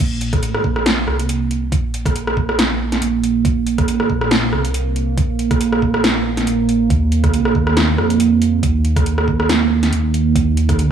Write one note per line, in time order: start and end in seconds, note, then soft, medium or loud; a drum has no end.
0.00 0.45 A#1 medium
0.00 10.92 A#3 medium
0.21 closed hi-hat medium
0.33 kick loud
0.33 cross-stick soft
0.33 closed hi-hat medium
0.43 0.63 A1 medium
0.43 closed hi-hat medium
0.55 cross-stick medium
0.64 1.06 A#1 medium
0.64 kick medium
0.76 cross-stick medium
0.86 snare loud
0.86 closed hi-hat medium
1.08 1.71 C2 medium
1.08 cross-stick medium
1.19 closed hi-hat medium
1.29 closed hi-hat medium
1.51 closed hi-hat medium
1.72 2.14 A#1 medium
1.72 kick loud
1.72 closed hi-hat medium
1.94 closed hi-hat medium
2.06 kick loud
2.06 cross-stick soft
2.06 closed hi-hat medium
2.16 3.00 A#1 loud
2.16 closed hi-hat medium
2.27 cross-stick medium
2.37 kick medium
2.49 cross-stick medium
2.59 snare loud
2.59 closed hi-hat medium
2.92 snare soft
2.92 closed hi-hat medium
3.02 3.44 A#1 loud
3.02 closed hi-hat medium
3.24 closed hi-hat medium
3.45 3.90 A#1 medium
3.45 kick loud
3.45 closed hi-hat medium
3.67 closed hi-hat soft
3.78 kick loud
3.78 cross-stick medium
3.78 closed hi-hat soft
3.88 4.08 A1 medium
3.88 closed hi-hat medium
4.00 cross-stick medium
4.10 4.51 A#1 loud
4.10 kick medium
4.21 cross-stick medium
4.31 snare loud
4.31 closed hi-hat medium
4.53 5.16 C2 loud
4.53 cross-stick medium
4.65 closed hi-hat medium
4.74 closed hi-hat medium
4.96 closed hi-hat soft
5.18 5.59 A#1 medium
5.18 kick loud
5.18 closed hi-hat medium
5.39 closed hi-hat soft
5.51 kick loud
5.51 cross-stick medium
5.51 closed hi-hat soft
5.61 6.46 A#1 loud
5.61 closed hi-hat medium
5.73 cross-stick medium
5.82 kick medium
5.94 cross-stick medium
6.04 snare loud
6.04 closed hi-hat medium
6.37 snare soft
6.37 closed hi-hat soft
6.47 6.89 A#1 loud
6.47 closed hi-hat medium
6.69 closed hi-hat soft
6.90 7.54 D#2 medium
6.90 kick loud
6.90 closed hi-hat medium
7.12 closed hi-hat soft
7.24 kick loud
7.24 cross-stick medium
7.24 closed hi-hat soft
7.34 closed hi-hat medium
7.45 cross-stick medium
7.55 7.97 D#2 medium
7.55 kick medium
7.67 cross-stick medium
7.77 snare loud
7.77 closed hi-hat medium
7.98 8.62 F2 loud
7.98 cross-stick medium
8.10 closed hi-hat soft
8.20 closed hi-hat medium
8.42 closed hi-hat soft
8.63 9.05 D#2 medium
8.63 kick loud
8.63 closed hi-hat medium
8.85 closed hi-hat soft
8.96 kick loud
8.96 cross-stick soft
8.96 closed hi-hat medium
9.06 9.91 D#2 medium
9.06 closed hi-hat medium
9.18 cross-stick medium
9.28 kick medium
9.40 cross-stick medium
9.49 snare loud
9.49 closed hi-hat medium
9.83 snare soft
9.83 closed hi-hat medium
9.93 10.34 D#2 loud
9.93 closed hi-hat medium
10.14 closed hi-hat soft
10.36 10.81 D#2 loud
10.36 kick loud
10.36 closed hi-hat medium
10.57 closed hi-hat medium
10.69 kick loud
10.69 cross-stick soft
10.69 closed hi-hat medium
10.79 10.92 D2 loud
10.79 closed hi-hat medium